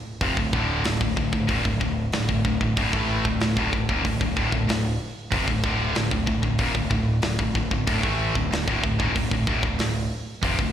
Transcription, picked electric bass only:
0.22 0.36 F1 medium
0.37 0.52 D1 medium
0.54 0.83 D1 medium
0.85 1.00 D1 medium
1.02 1.16 D1 medium
1.17 1.32 D1 medium
1.33 1.48 D1 medium
1.49 1.64 D#1 medium
1.65 1.80 D1 medium
1.82 2.11 D1 medium
2.15 2.29 D1 medium
2.29 2.44 D1 medium
2.45 2.60 D1 medium
2.61 2.76 D1 medium
2.77 2.92 D1 medium
2.93 3.23 A1 medium
3.26 3.40 D1 medium
3.41 3.56 D1 medium
3.57 3.72 D1 medium
3.73 3.88 D1 medium
3.89 4.04 D#1 medium
4.05 4.20 D1 medium
4.21 4.36 D1 medium
4.37 4.52 D1 medium
4.53 4.67 D1 medium
4.68 4.98 D1 medium
5.33 5.48 F1 medium
5.48 5.63 D1 medium
5.64 5.94 D1 medium
5.96 6.11 D1 medium
6.11 6.27 D1 medium
6.27 6.43 D1 medium
6.44 6.59 D1 medium
6.60 6.75 D#1 medium
6.75 6.90 D1 medium
6.90 7.21 D1 medium
7.23 7.38 D1 medium
7.39 7.54 D1 medium
7.56 7.71 D1 medium
7.72 7.87 D1 medium
7.88 8.03 D1 medium
8.04 8.33 A1 medium
8.36 8.51 D1 medium
8.53 8.67 D1 medium
8.68 8.83 D1 medium
8.84 8.98 D1 medium
9.00 9.15 D#1 medium
9.16 9.30 D1 medium
9.32 9.46 D1 medium
9.47 9.62 D1 medium
9.64 9.78 D1 medium
9.81 10.10 D1 medium
10.43 10.58 F1 medium
10.60 10.72 D1 medium

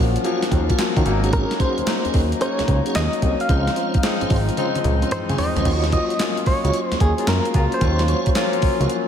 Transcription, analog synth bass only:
0.00 0.17 A#1 medium
0.52 0.71 D#2 loud
0.97 1.03 D#3 medium
1.06 1.45 G#1 loud
1.78 1.82 D#2 soft
2.05 2.09 D#2 soft
2.14 2.34 D#2 medium
2.60 2.63 C#2 soft
2.68 2.81 C#2 loud
2.96 3.09 D#2 medium
3.22 3.35 C2 loud
3.49 3.69 C#2 medium
3.95 3.98 G#1 soft
4.22 4.25 G#1 soft
4.31 4.50 G#1 loud
4.85 5.04 C#2 loud
5.29 5.36 C#3 medium
5.56 5.63 C#2 medium
5.65 5.98 D#2 loud
6.47 6.54 C#2 soft
6.64 6.71 C#2 loud
6.92 6.95 D#2 medium
7.00 7.14 D#2 loud
7.27 7.40 F#2 medium
7.54 7.68 C#2 loud
7.81 8.14 D#2 loud
8.62 8.70 C#2 soft
8.80 8.87 C#2 loud

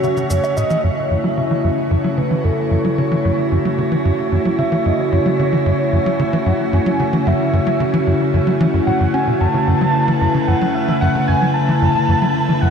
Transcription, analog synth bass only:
0.03 0.07 C#3 medium
0.17 0.23 C#3 medium
0.30 0.40 F#2 medium
0.57 0.64 A2 medium
0.70 0.77 E3 medium
0.84 0.90 F#2 medium
1.11 1.17 F#2 medium
1.24 1.28 F#3 medium
1.37 1.41 C#3 medium
1.51 1.55 E3 medium
1.64 1.71 F#2 medium
1.91 1.97 F#2 medium
2.04 2.08 F#3 medium
2.18 2.22 C#3 medium
2.31 2.35 E3 medium
2.44 2.51 F#2 medium
2.71 2.78 F#2 medium
2.85 2.89 F#3 medium
2.98 3.02 C#3 medium
3.12 3.15 E3 medium
3.25 3.31 F#2 medium
3.52 3.58 F#2 medium
3.65 3.69 F#3 medium
3.78 3.82 C#3 medium
3.92 3.96 E3 medium
4.05 4.12 F#2 medium
4.32 4.39 F#2 medium
4.45 4.49 F#3 medium
4.58 4.63 C#3 medium
4.72 4.76 E3 medium
4.86 4.92 F#2 medium
5.12 5.19 F#2 medium
5.26 5.30 F#3 medium
5.39 5.43 C#3 medium
5.53 5.57 E3 medium
5.66 5.72 F#2 medium
5.93 5.99 F#2 medium
6.06 6.10 F#3 medium
6.19 6.23 C#3 medium
6.33 6.37 E3 medium
6.46 6.53 F#2 medium
6.73 6.79 F#2 medium
6.86 6.90 F#3 medium
6.99 7.04 C#3 medium
7.13 7.17 E3 medium
7.27 7.33 F#2 medium
7.53 7.60 F#2 medium
7.67 7.71 F#3 medium
7.80 7.84 C#3 medium
7.94 7.97 E3 medium
8.07 8.14 F#2 medium
8.34 8.40 F#2 medium
8.47 8.51 F#3 medium
8.60 8.67 E3 loud
8.74 8.80 F#2 medium
8.87 8.91 A2 medium
9.00 9.07 F#2 medium
9.14 9.24 C#4 medium
9.27 9.34 B2 medium
9.41 9.47 F#2 medium
9.54 9.58 C#3 medium
9.67 9.74 F#2 medium
9.81 9.85 F#3 medium
10.08 10.12 E3 medium
10.21 10.28 F#2 medium
10.34 10.38 C#3 medium
10.48 10.55 F#2 medium
10.61 10.65 F#3 medium
10.88 10.92 E3 medium
11.02 11.08 F#2 medium
11.15 11.19 C#3 medium
11.28 11.35 F#2 medium
11.42 11.46 F#3 medium
11.69 11.72 E3 medium
11.82 11.88 F#2 medium
11.95 11.99 C#3 medium
12.08 12.15 F#2 medium
12.22 12.26 F#3 medium
12.49 12.53 E3 medium
12.62 12.69 F#2 medium

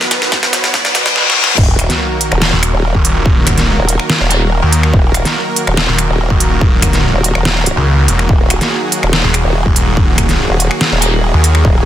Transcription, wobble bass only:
1.58 1.88 D#1 medium
2.32 2.51 D#1 loud
2.74 2.93 D#1 medium
3.79 3.98 D#1 loud
4.20 4.61 D#1 loud
4.94 5.24 D#1 loud
5.67 5.87 D#1 loud
6.09 6.29 D#1 loud
7.14 7.33 D#1 medium
7.35 7.75 D#1 medium
8.29 8.59 D#1 loud
9.03 9.22 D#1 medium
9.45 9.64 D#1 loud
10.50 10.69 D#1 loud
10.92 11.32 D#1 loud
11.65 11.85 D#1 loud

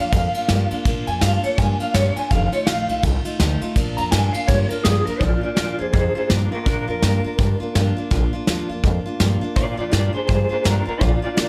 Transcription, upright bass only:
0.13 0.30 F2 medium
0.35 muted upright bass stroke medium
0.50 0.66 G2 medium
0.71 muted upright bass stroke medium
0.85 1.02 A#1 medium
1.08 1.19 F2 loud
1.22 1.39 G2 loud
1.44 muted upright bass stroke medium
1.58 1.75 G2 loud
1.80 muted upright bass stroke medium
1.94 2.11 G2 medium
2.16 muted upright bass stroke medium
2.31 2.48 F1 loud
2.67 2.84 A#1 medium
2.89 3.00 C2 loud
3.03 3.20 C2 loud
3.25 muted upright bass stroke medium
3.40 3.57 D2 medium
3.61 muted upright bass stroke medium
3.76 3.93 A#1 loud
3.98 4.09 F2 loud
4.12 4.29 G2 loud
4.34 muted upright bass stroke medium
4.48 4.65 G2 loud
4.71 muted upright bass stroke medium
4.86 5.02 G2 loud
5.08 muted upright bass stroke medium
5.21 5.38 A#1 medium
5.43 muted upright bass stroke medium
5.58 5.75 D#2 medium
5.80 5.91 F2 medium
5.94 6.11 F2 loud
6.16 muted upright bass stroke medium
6.31 6.47 G2 medium
6.52 muted upright bass stroke medium
6.66 6.83 A#1 medium
6.88 6.99 F2 medium
7.03 7.20 G2 medium
7.25 muted upright bass stroke medium
7.39 7.56 G2 medium
7.61 muted upright bass stroke medium
7.75 7.92 G2 medium
7.97 muted upright bass stroke medium
8.11 8.28 A#1 medium
8.47 8.64 D#2 medium
8.69 8.80 F2 medium
8.83 9.00 F2 loud
9.06 muted upright bass stroke medium
9.20 9.37 G2 medium
9.42 muted upright bass stroke medium
9.56 9.73 A#1 loud
9.78 9.89 F2 medium
9.93 10.09 G2 medium
10.29 10.46 G2 loud
10.51 muted upright bass stroke medium
10.65 10.82 G2 loud
10.87 muted upright bass stroke medium
11.01 11.18 A#1 medium
11.23 muted upright bass stroke medium
11.38 11.49 D#2 loud

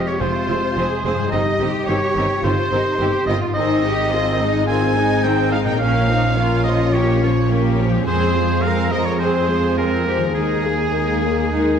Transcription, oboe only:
0.08 0.22 C#5 medium
0.21 1.04 C5 medium
1.05 1.31 C5 medium
1.32 1.68 D#5 medium
1.88 2.40 C#5 medium
2.44 3.27 C5 medium
3.27 3.40 D#5 medium
3.55 4.66 D#5 loud
4.67 5.25 G#5 medium
5.23 5.51 G5 medium
5.52 5.59 F5 medium
5.66 5.73 G5 medium
5.79 6.63 F5 loud
6.64 6.95 D#5 medium
6.93 7.50 C#5 medium
8.07 8.64 C5 medium
8.62 8.93 F5 medium
8.92 9.07 D#5 medium
9.06 9.19 C#5 medium
9.20 9.76 C5 medium
9.78 10.34 A#4 medium
10.35 11.79 G#4 medium

